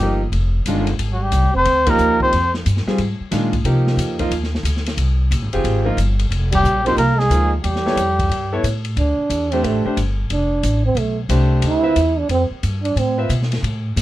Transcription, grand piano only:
0.02 0.20 F3 medium
0.02 0.20 A#3 medium
0.02 0.20 D#4 medium
0.02 0.20 G4 medium
0.67 0.86 D#3 medium
0.67 0.86 G#3 medium
0.67 0.86 D4 medium
0.67 0.86 F4 medium
1.87 2.30 F3 medium
1.87 2.30 A#3 medium
1.87 2.30 D#4 medium
1.87 2.30 G4 medium
2.87 2.98 G3 medium
2.87 2.98 C4 medium
2.87 2.98 F4 medium
2.87 2.98 G#4 medium
3.31 3.51 D#3 medium
3.31 3.51 G#3 medium
3.31 3.51 D4 medium
3.31 3.51 F4 medium
3.65 4.15 F3 medium
3.65 4.16 A#3 medium
3.65 4.15 D#4 medium
3.65 4.16 G4 medium
4.19 4.30 F3 medium
4.19 4.30 A#3 medium
4.19 4.30 D#4 medium
4.19 4.31 F4 medium
5.53 5.84 C4 medium
5.53 5.84 F4 medium
5.53 5.84 G4 medium
5.53 5.84 G#4 medium
5.85 5.97 F3 medium
5.85 5.96 A#3 medium
5.85 5.97 D#4 medium
5.85 5.97 F4 medium
6.86 6.97 F3 medium
6.86 6.97 A#3 medium
6.86 6.97 D#4 medium
6.86 6.97 G4 medium
7.31 7.50 F3 medium
7.31 7.50 A#3 medium
7.31 7.50 D#4 medium
7.31 7.50 F4 medium
7.86 7.96 B3 medium
7.86 7.97 E4 medium
7.86 7.97 A4 medium
7.86 7.97 C#5 medium
8.53 8.63 B3 medium
8.53 8.63 E4 medium
8.53 8.63 A4 medium
8.53 8.64 C#5 medium
9.52 9.83 A3 medium
9.52 9.83 D4 medium
9.52 9.84 G4 medium
9.52 9.84 C5 medium
9.85 9.96 A3 medium
9.85 9.96 D4 medium
9.85 9.96 G4 medium
9.85 9.97 C5 medium
11.29 11.80 A3 medium
11.29 11.80 D4 medium
11.29 11.80 G4 medium
11.29 11.81 C5 medium
11.83 11.95 C4 medium
11.83 11.95 F4 medium
11.83 11.95 B4 medium
11.83 11.95 E5 medium
13.18 13.29 C4 medium
13.18 13.29 F4 medium
13.18 13.29 B4 medium
13.18 13.29 E5 medium

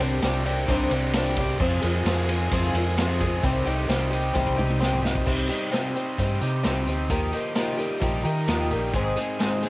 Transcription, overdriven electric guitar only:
0.00 0.22 C3 medium
0.00 0.20 D#3 medium
0.00 0.21 G3 medium
0.00 0.23 C4 medium
0.00 0.23 G4 medium
0.21 0.46 D#3 medium
0.21 0.45 G3 medium
0.21 0.45 C4 medium
0.21 0.43 G4 medium
0.44 0.92 C3 medium
0.44 0.65 D#3 medium
0.44 0.67 G3 medium
0.44 0.69 C4 medium
0.44 0.69 G4 loud
0.67 0.91 D#3 medium
0.67 0.91 G3 medium
0.67 0.91 C4 medium
0.67 0.89 G4 medium
0.90 1.38 C3 medium
0.90 1.11 D#3 medium
0.90 1.12 G3 medium
0.90 1.14 C4 medium
0.90 1.14 G4 medium
1.12 1.58 D#3 medium
1.12 1.37 G3 medium
1.12 1.36 C4 medium
1.12 1.34 G4 medium
1.35 1.59 G3 medium
1.35 1.61 C4 medium
1.35 1.58 G4 medium
1.58 2.05 F2 medium
1.58 2.05 C3 medium
1.58 1.83 F3 loud
1.58 1.82 G#3 medium
1.58 1.82 C4 loud
1.58 1.80 G#4 loud
1.81 2.03 F3 medium
1.81 2.04 G#3 medium
1.81 2.06 C4 medium
1.81 2.06 G#4 medium
2.04 2.28 F3 medium
2.04 2.28 G#3 medium
2.04 2.28 C4 medium
2.04 2.26 G#4 medium
2.27 2.76 F2 medium
2.27 2.75 C3 medium
2.27 2.50 F3 medium
2.27 2.51 G#3 medium
2.27 2.53 C4 medium
2.27 2.53 G#4 loud
2.51 2.75 F3 medium
2.51 2.73 G#3 medium
2.51 2.74 C4 medium
2.51 2.72 G#4 medium
2.74 3.22 F2 medium
2.74 3.21 C3 medium
2.74 2.95 F3 medium
2.74 2.96 G#3 medium
2.74 2.98 C4 medium
2.74 2.99 G#4 medium
2.97 3.21 F3 medium
2.97 3.21 G#3 medium
2.97 3.20 C4 medium
2.97 3.19 G#4 medium
3.20 3.43 F3 medium
3.20 3.43 G#3 medium
3.20 3.44 C4 medium
3.20 3.42 G#4 medium
3.42 3.89 C3 medium
3.42 3.86 D#3 medium
3.42 3.67 G3 medium
3.42 3.66 C4 medium
3.42 3.64 G4 loud
3.65 3.88 G3 medium
3.65 3.89 C4 medium
3.65 3.90 G4 medium
3.88 4.12 D#3 medium
3.88 4.12 G3 medium
3.88 4.11 C4 medium
3.88 4.10 G4 medium
4.11 4.59 C3 medium
4.11 4.33 D#3 medium
4.11 4.34 G3 medium
4.11 4.35 C4 medium
4.11 4.36 G4 medium
4.34 4.59 D#3 medium
4.34 4.58 G3 medium
4.34 4.57 C4 medium
4.34 4.56 G4 medium
4.57 5.05 C3 medium
4.57 4.79 D#3 medium
4.57 4.80 G3 medium
4.57 4.81 C4 medium
4.57 4.82 G4 medium
4.80 5.25 D#3 medium
4.80 5.04 G3 medium
4.80 5.03 C4 medium
4.80 5.01 G4 medium
5.02 5.26 G3 medium
5.02 5.25 C4 medium
5.02 5.24 G4 medium
5.26 6.41 C3 medium
5.49 5.70 G3 medium
5.71 6.87 G3 medium
5.95 6.85 C4 medium
6.18 6.64 D#4 medium
6.41 7.10 G4 medium
6.64 7.36 D#4 medium
6.86 7.10 C4 medium
7.11 8.25 D#3 medium
7.33 7.54 F3 medium
7.55 8.71 F3 medium
7.79 8.68 G3 medium
8.01 8.46 D#4 medium
8.24 8.94 A#4 medium
8.48 8.94 D#4 medium
8.70 8.94 G3 medium
8.93 9.69 G#2 medium
9.17 9.69 D#3 medium
9.40 9.69 G#3 medium
9.63 9.69 C4 medium

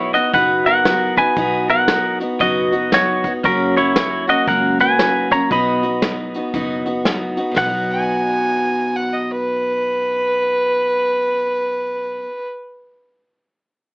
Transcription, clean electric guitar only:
0.00 0.12 E4 medium
0.00 0.11 C#5 medium
0.14 0.33 F#4 medium
0.14 0.34 D#5 medium
0.34 0.64 B4 medium
0.34 0.65 F#5 medium
0.66 1.15 A#4 medium
0.66 1.14 F#5 loud
1.18 1.66 B4 medium
1.18 1.70 G#5 medium
1.70 2.18 A#4 medium
1.70 2.18 F#5 medium
2.41 2.89 F#4 medium
2.41 2.94 D#5 medium
2.94 3.32 F#4 medium
2.94 3.32 C#5 medium
3.45 3.74 C#4 medium
3.45 3.77 A#4 medium
3.77 4.25 E4 medium
3.77 4.30 C#5 medium
4.29 4.47 F#4 medium
4.29 4.48 D#5 medium
4.48 4.77 A#4 medium
4.48 4.77 F#5 medium
4.81 5.28 B4 medium
4.81 5.32 G#5 medium
5.32 5.50 C#5 medium
5.32 5.52 A#5 loud
5.52 7.02 D#5 medium
5.52 7.02 B5 medium
7.58 12.21 F#5 medium

